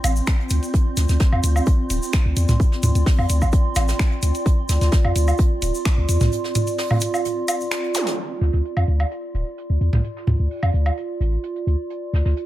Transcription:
Already playing: C4 F4 D5 C6
0.04 A1, closed hi-hat, low woodblock, shaker
0.16 shaker
0.27 finger snap, kick, snare, closed hi-hat, shaker
0.40 closed hi-hat
0.50 D2, closed hi-hat, shaker
0.63 closed hi-hat, shaker
0.74 kick, closed hi-hat, shaker
0.97 D2, snare, closed hi-hat, shaker
1.09 D2, snare, closed hi-hat, shaker
1.20 kick, snare, closed hi-hat, shaker
1.32 F2, low woodblock
1.43 D2, closed hi-hat, shaker
1.56 low woodblock, shaker
1.66 kick, closed hi-hat, shaker
1.90 D1, closed hi-hat, shaker
2.03 shaker
2.13 finger snap, kick, snare, closed hi-hat, shaker
2.26 D2
2.37 E2, closed hi-hat, shaker
2.49 C2, snare, closed hi-hat, mid tom, shaker
2.60 kick, closed hi-hat, shaker
2.72 snare
2.83 D2, closed hi-hat, mid tom, shaker
2.95 D2, closed hi-hat, shaker
3.06 kick, snare, open hi-hat, shaker
3.19 F2, low woodblock
3.29 D2, closed hi-hat, shaker
3.42 kick, low woodblock, shaker
3.52 kick, closed hi-hat, shaker
3.76 A1, snare, closed hi-hat, low woodblock, shaker
3.88 snare, closed hi-hat, shaker
3.99 finger snap, kick, snare, closed hi-hat, shaker
4.12 closed hi-hat
4.22 D2, closed hi-hat, shaker
4.35 closed hi-hat, shaker
4.46 kick, closed hi-hat, shaker
4.69 D2, snare, closed hi-hat, shaker
4.81 D2, snare, closed hi-hat, shaker
4.92 kick, snare, closed hi-hat, shaker
5.05 F2, low woodblock
5.15 D2, closed hi-hat, shaker
5.28 low woodblock, shaker
5.38 kick, closed hi-hat, shaker
5.62 D1, closed hi-hat, shaker
5.75 shaker
5.85 finger snap, kick, snare, closed hi-hat, shaker
5.98 D2
6.08 E2, closed hi-hat, shaker
6.21 C2, snare, closed hi-hat, mid tom, shaker
6.32 closed hi-hat, shaker
6.44 snare
6.55 closed hi-hat, mid tom, shaker
6.67 closed hi-hat, shaker
6.78 snare, open hi-hat, shaker
6.91 mid tom, low woodblock
7.01 closed hi-hat, shaker
7.14 low woodblock, shaker
7.25 closed hi-hat, shaker
7.48 closed hi-hat, low woodblock, shaker
7.61 shaker
7.71 finger snap, snare, closed hi-hat, shaker
7.84 closed hi-hat
7.94 snare, closed hi-hat, zap, shaker
8.07 snare, closed hi-hat, shaker
8.18 closed hi-hat
8.41 D2, snare, closed hi-hat
8.53 D2, snare
8.65 closed hi-hat
8.77 F2, low woodblock
8.87 D2, closed hi-hat
9.00 low woodblock
9.11 closed hi-hat
9.34 D1, closed hi-hat
9.58 closed hi-hat
9.70 D2
9.81 E2, closed hi-hat
9.93 C2, snare, mid tom
10.04 closed hi-hat
10.17 snare
10.27 D2, closed hi-hat, mid tom
10.39 D2
10.51 open hi-hat
10.63 F2, low woodblock
10.74 D2, closed hi-hat
10.86 low woodblock
10.97 closed hi-hat
11.20 A1, closed hi-hat
11.43 closed hi-hat
11.56 closed hi-hat
11.67 D2, closed hi-hat
11.90 closed hi-hat
12.13 D2, snare, closed hi-hat
12.25 D2, snare
12.37 closed hi-hat

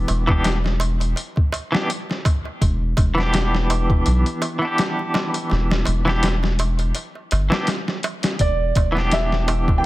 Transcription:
Already playing: E3 B3 D4 G4
0.08 E1, closed hi-hat, darbuka tek
0.27 E3 B3 D4, kick, darbuka tek
0.31 G4
0.44 snare, closed hi-hat, darbuka tek
0.64 snare, darbuka tek
0.80 closed hi-hat, darbuka tek
1.00 closed hi-hat, darbuka tek
1.16 closed hi-hat, darbuka tek
1.36 kick, darbuka tek
1.52 closed hi-hat, darbuka tek
1.72 E3 B3 D4, snare, darbuka tek
1.76 G4
1.90 closed hi-hat, darbuka tek
2.10 snare, darbuka tek
2.25 kick, closed hi-hat, darbuka tek
2.45 darbuka tek
2.62 E1, kick, closed hi-hat, darbuka tek
2.97 E1, kick, closed hi-hat, darbuka tek
3.15 E3 B3, snare, darbuka tek
3.20 D4 G4
3.33 snare, closed hi-hat, darbuka tek
3.55 snare
3.70 closed hi-hat, darbuka tek
3.90 kick, darbuka tek
4.06 B1, closed hi-hat, darbuka tek
4.26 closed hi-hat, darbuka tek
4.42 closed hi-hat, darbuka tek
4.59 E3 B3, darbuka tek
4.65 D4 G4
4.78 snare, closed hi-hat, darbuka tek
4.99 darbuka tek
5.14 snare, darbuka tek
5.34 closed hi-hat, darbuka tek
5.50 E1, snare, darbuka tek
5.70 snare, darbuka tek
5.85 E1, closed hi-hat, darbuka tek
6.05 E3 B3 D4, snare, darbuka tek
6.09 G4
6.23 snare, closed hi-hat, darbuka tek
6.43 snare, darbuka tek
6.59 closed hi-hat, darbuka tek
6.79 closed hi-hat, darbuka tek
6.95 closed hi-hat, darbuka tek
7.15 darbuka tek
7.31 G1, closed hi-hat, darbuka tek
7.50 E3 B3 D4, snare, darbuka tek
7.54 G4
7.67 snare, closed hi-hat, darbuka tek
7.88 snare, darbuka tek
8.03 closed hi-hat, darbuka tek
8.23 snare, closed hi-hat, darbuka tek
8.39 E1 D5, kick, closed hi-hat, darbuka tek
8.75 E1, kick, closed hi-hat, darbuka tek
8.92 E3 B3
8.97 D4 G4, snare, darbuka tek
9.12 E5, snare, closed hi-hat, darbuka tek
9.32 snare
9.48 closed hi-hat, darbuka tek
9.68 kick, darbuka tek
9.78 G5

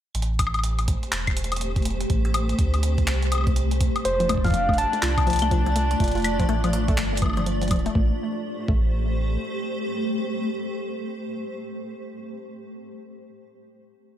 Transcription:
0.15 A1 A3 G4 C5, closed hi-hat
0.22 closed hi-hat
0.39 kick, closed hi-hat, high woodblock
0.47 high woodblock
0.54 closed hi-hat, high woodblock
0.59 high woodblock
0.64 closed hi-hat
0.79 closed hi-hat, high woodblock
0.88 kick, closed hi-hat
1.03 closed hi-hat
1.12 E1, clap, closed hi-hat
1.27 kick, closed hi-hat, high woodblock
1.37 closed hi-hat
1.44 closed hi-hat
1.52 closed hi-hat, high woodblock
1.56 closed hi-hat
1.61 closed hi-hat
1.76 kick, closed hi-hat
1.82 closed hi-hat
1.85 closed hi-hat
1.90 closed hi-hat
2.01 closed hi-hat
2.10 A1, kick, closed hi-hat
2.25 closed hi-hat
2.34 closed hi-hat, high woodblock
2.49 closed hi-hat
2.59 D2, kick, closed hi-hat
2.74 closed hi-hat, high woodblock
2.83 closed hi-hat
2.98 kick, closed hi-hat
3.07 C2, clap, closed hi-hat
3.23 closed hi-hat
3.32 closed hi-hat, high woodblock
3.35 high woodblock
3.38 high woodblock
3.41 high woodblock
3.44 kick, closed hi-hat, high woodblock
3.56 closed hi-hat
3.71 closed hi-hat
3.81 kick, closed hi-hat
3.96 closed hi-hat, high woodblock
4.05 F1 A3 D4 F4 C5 D5, closed hi-hat
4.20 F3, closed hi-hat
4.29 A3, kick, closed hi-hat, high woodblock
4.34 kick
4.38 kick
4.44 F3 F5, kick, closed hi-hat
4.46 closed hi-hat
4.48 closed hi-hat
4.50 kick, closed hi-hat
4.52 closed hi-hat
4.54 F3, closed hi-hat
4.69 A3, kick, high woodblock
4.74 closed hi-hat
4.78 A5, closed hi-hat
4.93 A3, closed hi-hat
5.03 C2 F4, clap, closed hi-hat
5.18 kick, closed hi-hat, high woodblock
5.27 F3, closed hi-hat
5.30 closed hi-hat
5.33 closed hi-hat
5.36 closed hi-hat
5.39 A3, closed hi-hat
5.42 closed hi-hat, high woodblock
5.51 F3, kick, closed hi-hat
5.66 F3, closed hi-hat
5.76 A3, closed hi-hat
5.91 closed hi-hat
6.00 F1 A3, kick, closed hi-hat
6.04 closed hi-hat
6.08 closed hi-hat
6.11 closed hi-hat
6.15 F4, closed hi-hat
6.18 closed hi-hat
6.20 closed hi-hat
6.22 closed hi-hat
6.24 closed hi-hat, high woodblock
6.40 F3, kick, closed hi-hat
6.49 A1 A3, closed hi-hat
6.64 F3, closed hi-hat, high woodblock
6.73 F3, closed hi-hat
6.88 A3, kick, closed hi-hat
6.98 G1, clap, closed hi-hat
7.13 A3
7.17 closed hi-hat
7.22 E3, kick, closed hi-hat, high woodblock
7.26 high woodblock
7.30 high woodblock
7.33 closed hi-hat, high woodblock
7.37 F3, high woodblock
7.39 high woodblock
7.42 high woodblock
7.46 F3, closed hi-hat
7.62 F3, closed hi-hat
7.68 closed hi-hat
7.71 D1 F3, kick, closed hi-hat, high woodblock
7.76 closed hi-hat
7.79 closed hi-hat
7.86 A3, closed hi-hat
7.95 A1 A3 G4 C5, kick
8.68 A1 A3, kick

